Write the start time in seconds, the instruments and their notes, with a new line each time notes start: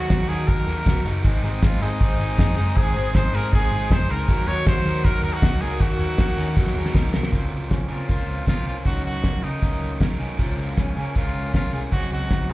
Already playing: clean electric guitar F#3 A#3 D#4 F#4, trumpet F#4
0.10 picked electric bass D#2, overdriven electric guitar F#3 D#4 F#4 A#4, clean electric guitar D#4, kick, snare, closed hi-hat
0.28 picked electric bass D#3, overdriven electric guitar D#4 F#4 A#4, clean electric guitar F#4, trumpet G#4, open hi-hat
0.47 picked electric bass D#2, overdriven electric guitar D#3 F#3 D#4 F#4 A#4, clean electric guitar A#3, trumpet A#4, kick, closed hi-hat
0.67 picked electric bass D#2, clean electric guitar D#4, overdriven electric guitar D#4 F#4 A#4, open hi-hat
0.86 picked electric bass C#2, overdriven electric guitar F#3 D#4 F#4 A#4, clean electric guitar F#4, kick, snare, closed hi-hat
1.05 picked electric bass F#1, clean electric guitar D#4, overdriven electric guitar D#4 F#4 A#4, open hi-hat
1.24 picked electric bass G#1, overdriven electric guitar G#2 D#3 G#3 C4 D#4 G#4, clean electric guitar C4, analog synth pad C5 G#5 D#6, kick, closed hi-hat
1.43 picked electric bass G#1, overdriven electric guitar G#3 C4 D#4 G#4, clean electric guitar C4, trumpet D#4, open hi-hat
1.62 picked electric bass G#1, overdriven electric guitar G#3 C4 D#4 G#4, clean electric guitar D#4, trumpet F4, kick, snare, closed hi-hat
1.81 picked electric bass G#2, overdriven electric guitar G#3 C4 D#4 G#4, trumpet D#4, clean electric guitar G#4, open hi-hat
2.00 picked electric bass G#1, overdriven electric guitar G#2 D#3 G#3 C4 D#4 G#4, clean electric guitar C4, kick, closed hi-hat
2.19 picked electric bass G#1, overdriven electric guitar G#3 C4 D#4 G#4, clean electric guitar D#4, open hi-hat
2.37 picked electric bass F#1, overdriven electric guitar G#3 C4 D#4 G#4, clean electric guitar G#4, kick, snare, closed hi-hat
2.57 picked electric bass F#1, overdriven electric guitar G#3 C4 D#4 G#4, clean electric guitar D#4, open hi-hat
2.76 picked electric bass G#1, overdriven electric guitar G#2 D#3 G#3 C4 D#4 G#4, clean electric guitar C4, trumpet G#4, kick, closed hi-hat
2.95 picked electric bass G#1, overdriven electric guitar G#3 C4 D#4 G#4, clean electric guitar C4, open hi-hat
3.15 picked electric bass G#1, overdriven electric guitar G#3 C4 D#4 G#4, clean electric guitar D#4, trumpet C5, kick, snare, closed hi-hat
3.34 picked electric bass G#2, overdriven electric guitar G#3 C4 D#4 G#4, clean electric guitar G#4, trumpet A#4, open hi-hat
3.53 picked electric bass G#1, overdriven electric guitar G#2 D#3 G#3 C4 D#4 G#4, clean electric guitar C4, trumpet G#4, kick, closed hi-hat
3.72 picked electric bass G#1, overdriven electric guitar G#3 C4 D#4 G#4, clean electric guitar D#4, open hi-hat
3.90 picked electric bass F#1, overdriven electric guitar G#3 C4 D#4 G#4, clean electric guitar G#4, trumpet C5, kick, snare, closed hi-hat
4.09 picked electric bass C#2, overdriven electric guitar G#3 C4 D#4 G#4, clean electric guitar D#4, trumpet A#4, open hi-hat
4.28 picked electric bass D#2, overdriven electric guitar D#3 F#3 D#4 F#4 A#4, clean electric guitar F#3, analog synth pad A#4 F#5, kick, closed hi-hat
4.47 picked electric bass D#2, clean electric guitar F#3, overdriven electric guitar D#4 F#4 A#4, trumpet C#5, open hi-hat
4.66 picked electric bass D#2, overdriven electric guitar F#3 D#4 F#4 A#4, clean electric guitar A#3, trumpet C5, kick, snare, closed hi-hat
4.85 picked electric bass D#3, clean electric guitar D#4, overdriven electric guitar D#4 F#4 A#4, open hi-hat
5.04 picked electric bass D#2, overdriven electric guitar D#3 F#3 D#4 F#4 A#4, clean electric guitar F#3, trumpet A#4, kick, closed hi-hat
5.23 picked electric bass D#2, clean electric guitar A#3, overdriven electric guitar D#4 F#4 A#4, trumpet A#4, open hi-hat
5.33 trumpet F#4
5.42 picked electric bass C#2, overdriven electric guitar F#3 D#4 F#4 A#4, clean electric guitar D#4, kick, snare, closed hi-hat
5.61 picked electric bass C#2, clean electric guitar A#3, overdriven electric guitar D#4 F#4 A#4, trumpet G#4, open hi-hat
5.80 picked electric bass D#2, overdriven electric guitar D#3 F#3 D#4 F#4 A#4, clean electric guitar F#3, trumpet F#4, kick, closed hi-hat
5.99 picked electric bass D#2, clean electric guitar F#3, overdriven electric guitar D#4 F#4 A#4, open hi-hat
6.18 picked electric bass D#2, overdriven electric guitar F#3 D#4 F#4 A#4, clean electric guitar A#3, kick, snare, closed hi-hat
6.37 picked electric bass D#3, clean electric guitar C#4, overdriven electric guitar D#4 F#4 A#4, open hi-hat
6.48 clean electric guitar D#4
6.56 picked electric bass D#2, overdriven electric guitar D#3 F#3 D#4 F#4 A#4, clean electric guitar F#3, kick, snare
6.66 snare
6.75 picked electric bass D#2, clean electric guitar G#3, overdriven electric guitar D#4 F#4 A#4
6.86 clean electric guitar A#3, snare
6.94 picked electric bass C#2, overdriven electric guitar F#3 D#4 F#4 A#4, clean electric guitar D#4, kick, snare
7.13 picked electric bass C2, clean electric guitar A#3, overdriven electric guitar D#4 F#4 A#4, snare
7.23 snare
7.31 picked electric bass C#2, overdriven electric guitar C#3 A#3 C4 F4 A#4, clean electric guitar F3, kick, closed hi-hat
7.51 picked electric bass C#2, clean electric guitar F3
7.70 picked electric bass C#2, clean electric guitar C4, trumpet C#4, kick, snare, closed hi-hat
7.89 picked electric bass C#3, overdriven electric guitar C4 F4 A#4, clean electric guitar C#4, trumpet F4
8.09 picked electric bass C#2, overdriven electric guitar A#3 C4 F4 A#4, clean electric guitar A#3, kick, closed hi-hat
8.19 clean electric guitar C4
8.28 picked electric bass C#2, clean electric guitar F3
8.46 picked electric bass C2, overdriven electric guitar A#3 C4 F4 A#4, clean electric guitar A#3, trumpet F4, kick, snare, closed hi-hat
8.56 clean electric guitar C4
8.66 picked electric bass C2, clean electric guitar C#4, trumpet F4
8.85 picked electric bass C#2, overdriven electric guitar C#3 F#3 C#4 D#4 A#4, clean electric guitar D#3, trumpet F#4, kick, closed hi-hat
9.04 picked electric bass C#2, clean electric guitar D#3, trumpet F#4
9.24 picked electric bass C#2, clean electric guitar A#3, kick, snare, closed hi-hat
9.42 picked electric bass C#3, clean electric guitar C#4, overdriven electric guitar C#4 D#4 A#4, trumpet D#4
9.62 picked electric bass C#2, overdriven electric guitar F#3 C#4 D#4 A#4, clean electric guitar A#3, kick, closed hi-hat
9.81 picked electric bass C#2, clean electric guitar D#3
10.00 picked electric bass C2, overdriven electric guitar F#3 C#4 D#4 A#4, clean electric guitar G#3, kick, snare, closed hi-hat
10.10 clean electric guitar A#3
10.19 picked electric bass C2, clean electric guitar C#4
10.39 picked electric bass C#2, overdriven electric guitar C#3 G#3 C#4 F4 A#4, clean electric guitar F3, kick, closed hi-hat
10.57 picked electric bass C#2, clean electric guitar A#3
10.77 picked electric bass C#2, clean electric guitar C#4, trumpet C#4, kick, snare, closed hi-hat
10.96 picked electric bass C#3, overdriven electric guitar C#4 F4 A#4, clean electric guitar G#4
11.15 picked electric bass C#2, overdriven electric guitar G#3 C#4 F4 A#4, clean electric guitar C#4, trumpet F4, kick, closed hi-hat
11.34 picked electric bass C#2, clean electric guitar A#3
11.53 picked electric bass C2, overdriven electric guitar G#3 C#4 F4 A#4, clean electric guitar C#4, trumpet F4, kick, snare, closed hi-hat
11.73 picked electric bass C2, trumpet F4, clean electric guitar G#4
11.91 picked electric bass C#2, overdriven electric guitar C#3 F#3 C4 D#4 G#4, clean electric guitar F#3, trumpet F#4, kick, closed hi-hat
12.11 picked electric bass C#2, clean electric guitar C4, trumpet F#4
12.30 picked electric bass C#2, clean electric guitar D#4, kick, snare, closed hi-hat
12.49 picked electric bass C#3, overdriven electric guitar G#4, clean electric guitar G#4